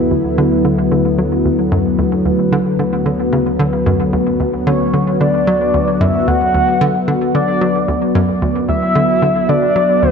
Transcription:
Already playing: D2 F#3 B3 E4 A4
0.11 D2
0.38 D3
0.65 D3
0.92 D3
1.18 F#3
1.45 D2
1.72 F#2
1.99 D2
2.25 D2
2.52 D3
2.79 D3
3.06 D3
3.33 C#3
3.60 D3
3.76 F#4
3.86 F#2
4.13 D2
4.40 D2
4.67 D3 C#5
4.94 D3
5.21 D3 D5
5.47 F#3
5.74 D2
6.01 F#2 E5
6.28 D2 F#5
6.54 D2
6.81 D3
7.08 D3
7.35 D3 D5
7.61 F#3
7.88 D2
8.15 F#2
8.42 D2
8.69 D2 E5
8.95 D3
9.22 D3
9.49 D3 D5
9.76 F#3
10.03 D2 B4

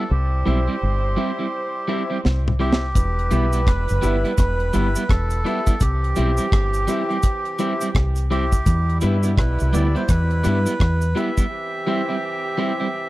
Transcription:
Already playing: A4
0.10 C2 G3 E4 G4 C5
0.45 B1 G3 C4 E4 G4 C5 E5
0.68 G3 C4 E4
0.83 G1
1.17 G3 C4 E4 G4 C5 E5
1.39 G3 C4 E4 C5 E5
1.88 G3 C4 E4 G4 C5 E5
2.10 G3 C4 E4
2.25 C2, snare
2.46 C5 E5, mid tom
2.59 G3 C4 E4 G4 C5 E5
2.73 snare
2.95 E1 G3 E4 B4, kick, closed hi-hat, cabasa
3.19 closed hi-hat
3.31 B1 G3 B3 E4 G4 B4 E5, closed hi-hat, cabasa
3.53 G3 B3 E4, closed hi-hat, cabasa
3.67 E1 B4, kick, cross-stick, closed hi-hat
3.88 F#1, closed hi-hat, cabasa
4.02 G1 G3 B3 E4 G4 B4 E5, closed hi-hat, cabasa
4.24 G3 B3 E4, closed hi-hat
4.38 E1 B4, kick, cross-stick, closed hi-hat, cabasa
4.60 closed hi-hat
4.73 G1 G3 B3 E4 G4 B4 E5, closed hi-hat, cabasa
4.95 G3 B3 E4, closed hi-hat, cabasa
5.09 E1 A4, kick, cross-stick, closed hi-hat
5.30 closed hi-hat, cabasa
5.45 G3 B3 E4 G4 B4 E5, closed hi-hat
5.67 G3 B3 E4, kick, closed hi-hat, cabasa
5.80 C2 E3 C4 G4, kick, closed hi-hat, cabasa
6.04 closed hi-hat
6.16 B1 G3 C4 E4 G4 C5 E5, closed hi-hat, cabasa
6.37 G3 C4 E4, closed hi-hat, cabasa
6.52 G1, kick, cross-stick, closed hi-hat
6.73 closed hi-hat, cabasa
6.88 G3 C4 E4 G4 C5 E5, closed hi-hat, cabasa
7.09 G3 C4 E4 C5 E5, closed hi-hat
7.23 kick, closed hi-hat, cabasa
7.45 closed hi-hat
7.59 G3 C4 E4 G4 C5 E5, closed hi-hat, cabasa
7.81 G3 C4 E4, closed hi-hat, cabasa
7.95 C2, kick, cross-stick, closed hi-hat
8.16 closed hi-hat, cabasa
8.30 G3 C4 E4 G4 C5 E5, closed hi-hat
8.52 C5 E5, kick, closed hi-hat, cabasa
8.66 E2 B2 G3 E4, kick, closed hi-hat, cabasa
8.90 closed hi-hat
9.01 G2 G3 B3 E4 G4 B4 E5, closed hi-hat, cabasa
9.23 G3 B3 E4, closed hi-hat, cabasa
9.38 B1 B4, kick, cross-stick, closed hi-hat
9.59 C2, closed hi-hat, cabasa
9.73 D2 G3 B3 E4 G4 B4 D5 E5, closed hi-hat, cabasa
9.95 G3 B3 E4 C5, closed hi-hat
10.08 E2 B4, kick, cross-stick, closed hi-hat, cabasa
10.31 closed hi-hat
10.44 G2 G3 B3 E4 G4 B4 E5, closed hi-hat, cabasa
10.66 G3 B3 E4, closed hi-hat, cabasa
10.80 E2, kick, cross-stick, closed hi-hat
11.01 closed hi-hat, cabasa
11.15 G3 B3 E4 G4 B4 E5, closed hi-hat
11.37 G3 B3 E4, kick, closed hi-hat, cabasa
11.51 E3 C4 G4
11.87 G3 C4 E4 G4 C5 E5
12.09 G3 C4 E4
12.58 G3 C4 E4 G4 C5 E5
12.80 G3 C4 E4 C5 E5

